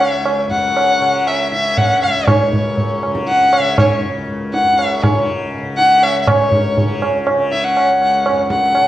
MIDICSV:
0, 0, Header, 1, 4, 480
1, 0, Start_track
1, 0, Tempo, 504626
1, 241, Time_signature, 4, 2, 24, 8
1, 4079, Tempo, 495050
1, 8527, End_track
2, 0, Start_track
2, 0, Title_t, "Violin"
2, 0, Program_c, 0, 40
2, 0, Note_on_c, 0, 78, 107
2, 129, Note_off_c, 0, 78, 0
2, 129, Note_on_c, 0, 76, 107
2, 370, Note_off_c, 0, 76, 0
2, 485, Note_on_c, 0, 78, 104
2, 1211, Note_on_c, 0, 76, 86
2, 1225, Note_off_c, 0, 78, 0
2, 1437, Note_off_c, 0, 76, 0
2, 1443, Note_on_c, 0, 76, 93
2, 1690, Note_on_c, 0, 78, 105
2, 1704, Note_off_c, 0, 76, 0
2, 1926, Note_off_c, 0, 78, 0
2, 1931, Note_on_c, 0, 76, 87
2, 2161, Note_on_c, 0, 73, 75
2, 2175, Note_off_c, 0, 76, 0
2, 2882, Note_off_c, 0, 73, 0
2, 3122, Note_on_c, 0, 78, 98
2, 3359, Note_on_c, 0, 76, 96
2, 3373, Note_off_c, 0, 78, 0
2, 3599, Note_off_c, 0, 76, 0
2, 3606, Note_on_c, 0, 73, 72
2, 3825, Note_off_c, 0, 73, 0
2, 4318, Note_on_c, 0, 78, 94
2, 4552, Note_on_c, 0, 76, 91
2, 4566, Note_off_c, 0, 78, 0
2, 4743, Note_off_c, 0, 76, 0
2, 4759, Note_on_c, 0, 76, 49
2, 4793, Note_on_c, 0, 73, 76
2, 4808, Note_off_c, 0, 76, 0
2, 5040, Note_off_c, 0, 73, 0
2, 5520, Note_on_c, 0, 78, 109
2, 5768, Note_on_c, 0, 76, 98
2, 5783, Note_off_c, 0, 78, 0
2, 5945, Note_off_c, 0, 76, 0
2, 5951, Note_on_c, 0, 76, 59
2, 6018, Note_on_c, 0, 73, 83
2, 6032, Note_off_c, 0, 76, 0
2, 6733, Note_off_c, 0, 73, 0
2, 7213, Note_on_c, 0, 76, 86
2, 7331, Note_on_c, 0, 78, 97
2, 7346, Note_off_c, 0, 76, 0
2, 8044, Note_off_c, 0, 78, 0
2, 8164, Note_on_c, 0, 78, 101
2, 8527, Note_off_c, 0, 78, 0
2, 8527, End_track
3, 0, Start_track
3, 0, Title_t, "Tanpura"
3, 0, Program_c, 1, 104
3, 0, Note_on_c, 1, 37, 52
3, 0, Note_on_c, 1, 42, 58
3, 0, Note_on_c, 1, 49, 65
3, 452, Note_off_c, 1, 42, 0
3, 455, Note_on_c, 1, 42, 61
3, 957, Note_off_c, 1, 49, 0
3, 957, Note_on_c, 1, 49, 62
3, 1441, Note_off_c, 1, 49, 0
3, 1441, Note_on_c, 1, 49, 56
3, 1930, Note_off_c, 1, 37, 0
3, 1934, Note_on_c, 1, 37, 58
3, 2423, Note_off_c, 1, 42, 0
3, 2427, Note_on_c, 1, 42, 62
3, 2915, Note_off_c, 1, 49, 0
3, 2915, Note_on_c, 1, 49, 57
3, 3414, Note_off_c, 1, 49, 0
3, 3414, Note_on_c, 1, 49, 54
3, 3905, Note_off_c, 1, 37, 0
3, 3909, Note_on_c, 1, 37, 62
3, 4399, Note_off_c, 1, 42, 0
3, 4403, Note_on_c, 1, 42, 56
3, 4893, Note_off_c, 1, 49, 0
3, 4893, Note_on_c, 1, 49, 61
3, 5375, Note_off_c, 1, 49, 0
3, 5375, Note_on_c, 1, 49, 53
3, 5860, Note_off_c, 1, 37, 0
3, 5864, Note_on_c, 1, 37, 62
3, 6011, Note_off_c, 1, 42, 0
3, 6015, Note_on_c, 1, 42, 61
3, 6501, Note_off_c, 1, 49, 0
3, 6501, Note_on_c, 1, 49, 72
3, 7000, Note_off_c, 1, 49, 0
3, 7000, Note_on_c, 1, 49, 68
3, 7479, Note_off_c, 1, 37, 0
3, 7483, Note_on_c, 1, 37, 62
3, 7966, Note_off_c, 1, 42, 0
3, 7970, Note_on_c, 1, 42, 60
3, 8467, Note_off_c, 1, 49, 0
3, 8467, Note_on_c, 1, 49, 67
3, 8527, Note_off_c, 1, 37, 0
3, 8527, Note_off_c, 1, 42, 0
3, 8527, Note_off_c, 1, 49, 0
3, 8527, End_track
4, 0, Start_track
4, 0, Title_t, "Tabla"
4, 7, Note_on_c, 9, 60, 65
4, 102, Note_off_c, 9, 60, 0
4, 242, Note_on_c, 9, 60, 76
4, 337, Note_off_c, 9, 60, 0
4, 487, Note_on_c, 9, 37, 49
4, 582, Note_off_c, 9, 37, 0
4, 729, Note_on_c, 9, 60, 68
4, 824, Note_off_c, 9, 60, 0
4, 972, Note_on_c, 9, 60, 60
4, 1067, Note_off_c, 9, 60, 0
4, 1207, Note_on_c, 9, 60, 71
4, 1302, Note_off_c, 9, 60, 0
4, 1447, Note_on_c, 9, 62, 54
4, 1542, Note_off_c, 9, 62, 0
4, 1688, Note_on_c, 9, 63, 84
4, 1688, Note_on_c, 9, 64, 81
4, 1784, Note_off_c, 9, 63, 0
4, 1784, Note_off_c, 9, 64, 0
4, 1929, Note_on_c, 9, 60, 61
4, 2024, Note_off_c, 9, 60, 0
4, 2163, Note_on_c, 9, 60, 103
4, 2163, Note_on_c, 9, 64, 97
4, 2258, Note_off_c, 9, 60, 0
4, 2258, Note_off_c, 9, 64, 0
4, 2408, Note_on_c, 9, 64, 71
4, 2503, Note_off_c, 9, 64, 0
4, 2641, Note_on_c, 9, 63, 69
4, 2641, Note_on_c, 9, 64, 60
4, 2737, Note_off_c, 9, 63, 0
4, 2737, Note_off_c, 9, 64, 0
4, 2884, Note_on_c, 9, 60, 67
4, 2979, Note_off_c, 9, 60, 0
4, 2999, Note_on_c, 9, 37, 62
4, 3094, Note_off_c, 9, 37, 0
4, 3119, Note_on_c, 9, 62, 70
4, 3214, Note_off_c, 9, 62, 0
4, 3356, Note_on_c, 9, 60, 73
4, 3451, Note_off_c, 9, 60, 0
4, 3595, Note_on_c, 9, 60, 98
4, 3595, Note_on_c, 9, 64, 98
4, 3690, Note_off_c, 9, 60, 0
4, 3690, Note_off_c, 9, 64, 0
4, 4320, Note_on_c, 9, 62, 64
4, 4417, Note_off_c, 9, 62, 0
4, 4561, Note_on_c, 9, 60, 74
4, 4658, Note_off_c, 9, 60, 0
4, 4802, Note_on_c, 9, 60, 107
4, 4802, Note_on_c, 9, 64, 89
4, 4899, Note_off_c, 9, 60, 0
4, 4899, Note_off_c, 9, 64, 0
4, 5530, Note_on_c, 9, 62, 86
4, 5627, Note_off_c, 9, 62, 0
4, 5766, Note_on_c, 9, 60, 81
4, 5863, Note_off_c, 9, 60, 0
4, 6006, Note_on_c, 9, 60, 111
4, 6006, Note_on_c, 9, 64, 94
4, 6103, Note_off_c, 9, 60, 0
4, 6103, Note_off_c, 9, 64, 0
4, 6241, Note_on_c, 9, 64, 66
4, 6338, Note_off_c, 9, 64, 0
4, 6491, Note_on_c, 9, 63, 74
4, 6491, Note_on_c, 9, 64, 72
4, 6587, Note_off_c, 9, 63, 0
4, 6587, Note_off_c, 9, 64, 0
4, 6731, Note_on_c, 9, 60, 67
4, 6828, Note_off_c, 9, 60, 0
4, 6968, Note_on_c, 9, 60, 83
4, 7065, Note_off_c, 9, 60, 0
4, 7209, Note_on_c, 9, 62, 60
4, 7306, Note_off_c, 9, 62, 0
4, 7452, Note_on_c, 9, 60, 96
4, 7549, Note_off_c, 9, 60, 0
4, 7692, Note_on_c, 9, 60, 61
4, 7789, Note_off_c, 9, 60, 0
4, 7927, Note_on_c, 9, 60, 85
4, 8024, Note_off_c, 9, 60, 0
4, 8162, Note_on_c, 9, 37, 62
4, 8259, Note_off_c, 9, 37, 0
4, 8400, Note_on_c, 9, 60, 87
4, 8497, Note_off_c, 9, 60, 0
4, 8527, End_track
0, 0, End_of_file